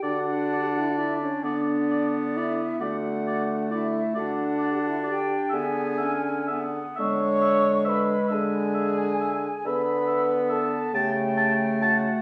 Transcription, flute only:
0.04 F#5
0.99 E5
1.23 C#5
1.47 D5
2.37 E5
2.82 F#5
3.73 E5
4.19 F#5
5.09 G5
5.54 G#5
6.99 C#6
7.89 B5
8.32 G#5
9.66 B5
10.51 A5
10.94 G5
11.82 F#5

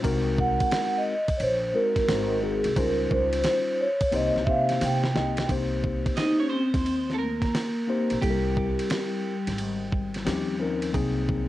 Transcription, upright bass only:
0.04 C2
1.40 A#1
2.08 G#1
2.66 C2
2.76 C#2
3.11 C#2
4.13 C2
4.35 C2
4.47 C3
4.82 C3
5.16 C2
5.49 C2
6.74 D#2
8.11 A#1
8.23 C2
9.47 G#1
10.27 D#2
10.94 C2

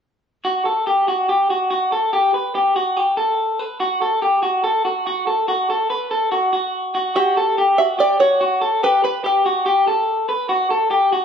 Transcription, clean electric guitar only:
0.45 F#4
0.65 A4
0.87 G4
1.08 F#4
1.29 G4
1.50 F#4
1.71 F#4
1.92 A4
2.13 G4
2.34 B4
2.55 G4
2.76 F#4
2.97 G4
3.17 A4
3.59 B4
3.80 F#4
4.02 A4
4.22 G4
4.43 F#4
4.64 A4
4.85 F#4
5.07 F#4
5.27 A4
5.48 F#4
5.70 A4
5.90 B4
6.11 A4
6.32 F#4
6.53 F#4
6.95 F#4
7.16 F#4
7.37 A4
7.58 G4
7.79 F#4
7.99 G4
8.20 F#4
8.41 F#4
8.61 A4
8.83 G4
9.04 B4
9.24 G4
9.46 F#4
9.66 G4
9.87 A4
10.29 B4
10.49 F#4
10.70 A4
10.91 G4
11.12 F#4

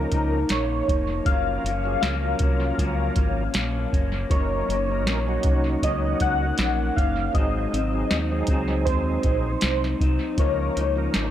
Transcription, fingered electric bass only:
0.12 C#2
0.50 A#1
0.89 F1
1.26 F#1
1.64 F#1
2.03 C#2
2.40 C2
2.79 C#2
3.16 G#1
3.55 A#1
3.93 F#1
4.31 F#1
4.68 F#1
5.06 A#1
5.45 C2
5.83 C#2
6.21 C#2
6.59 A#1
6.97 F#1
7.35 G#1
7.73 G#1
8.11 D#2
8.48 C#2
8.86 D#2
9.25 A#1
9.63 C2
10.01 C2
10.38 C#2
10.77 C#2
11.15 G#1

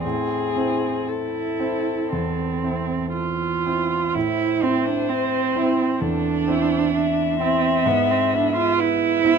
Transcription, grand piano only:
0.05 A2
0.56 C4 E4 C5
1.60 C4 E4 C5
2.12 E2
2.64 C4 E4 C5
3.66 C4 E4 C5
4.16 A2
4.63 C4 E4 E5
5.56 C4 E4 E5
6.01 E2
6.48 C4 E4 E5
7.41 C4 E4 E5
7.86 G#2
8.33 B3 E4 E5
9.25 B3 E4 E5

